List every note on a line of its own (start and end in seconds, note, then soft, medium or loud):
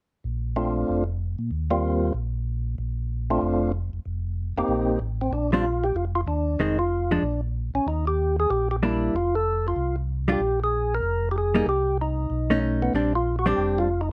0.24 0.85 A#1 medium
0.56 1.04 A3 medium
0.56 1.04 C4 soft
0.56 1.04 D4 medium
0.56 1.04 F4 medium
0.89 1.36 F1 medium
1.39 1.50 A#2 medium
1.51 2.12 D#2 medium
1.71 2.13 G3 medium
1.71 2.13 A#3 medium
1.71 2.13 C4 medium
1.71 2.13 F4 medium
2.14 2.75 A#1 medium
2.78 3.39 A#1 medium
3.30 3.72 A3 medium
3.30 3.72 C4 medium
3.30 3.72 D4 medium
3.30 3.72 F4 medium
3.41 3.90 F1 medium
3.93 3.99 F1 soft
4.06 4.53 F1 medium
4.56 4.63 F1 soft
4.56 4.99 A#3 medium
4.56 4.99 C4 medium
4.56 4.99 D#4 medium
4.56 4.99 G4 medium
4.68 4.98 A#1 medium
5.00 5.30 A1 medium
5.21 5.34 C4 medium
5.31 5.92 A#1 medium
5.31 5.51 D4 medium
5.52 5.64 G3 medium
5.52 5.64 C4 medium
5.52 5.64 D4 medium
5.52 5.85 F4 medium
5.84 5.96 G4 medium
5.95 6.25 F1 medium
5.95 6.05 F4 medium
6.15 6.21 F4 medium
6.26 6.57 D#2 medium
6.26 6.60 D4 medium
6.59 7.19 F1 medium
6.59 6.77 D#3 medium
6.59 6.78 G#3 medium
6.59 6.78 C4 medium
6.59 6.78 D#4 medium
6.79 7.12 F4 medium
7.11 7.22 F3 medium
7.11 7.22 G#3 soft
7.11 7.41 D4 medium
7.11 7.22 D4 soft
7.22 7.70 A#1 medium
7.74 7.80 A#1 soft
7.74 7.87 C#4 medium
7.86 8.47 D#2 medium
7.86 8.05 D#4 medium
8.07 8.36 G4 medium
8.40 8.50 G#4 medium
8.50 9.10 A#1 medium
8.50 8.68 G4 medium
8.71 8.76 G4 medium
8.83 9.14 G3 medium
8.83 9.14 A#3 medium
8.83 9.14 D4 medium
8.83 9.16 E4 medium
9.13 9.74 F1 medium
9.13 9.35 F4 medium
9.35 9.67 A4 loud
9.68 9.96 F4 medium
9.76 10.37 C2 medium
10.28 10.39 G3 medium
10.28 10.39 D4 medium
10.28 10.40 F4 medium
10.32 10.60 G4 medium
10.40 11.00 A#1 medium
10.64 10.94 G#4 medium
10.95 11.29 A#4 medium
11.03 11.63 F1 medium
11.31 11.36 G4 medium
11.38 11.66 G#4 medium
11.55 11.66 G3 medium
11.55 11.66 A#3 medium
11.55 11.66 D#4 medium
11.66 12.27 C2 medium
11.66 11.98 G4 medium
12.01 12.60 D#4 medium
12.30 12.90 B1 medium
12.50 12.92 A3 medium
12.50 12.92 C#4 medium
12.50 12.92 D#4 medium
12.82 12.93 B3 medium
12.94 13.54 A#1 medium
12.94 13.12 G3 soft
12.94 13.12 C4 soft
12.94 13.12 D4 medium
12.94 13.13 D4 medium
13.15 13.36 F4 medium
13.39 13.46 F#4 medium
13.46 13.87 G3 medium
13.46 13.87 C4 medium
13.46 13.88 D4 medium
13.46 13.79 G4 loud
13.58 14.12 F1 medium
13.78 14.01 F4 medium
14.01 14.09 D#4 medium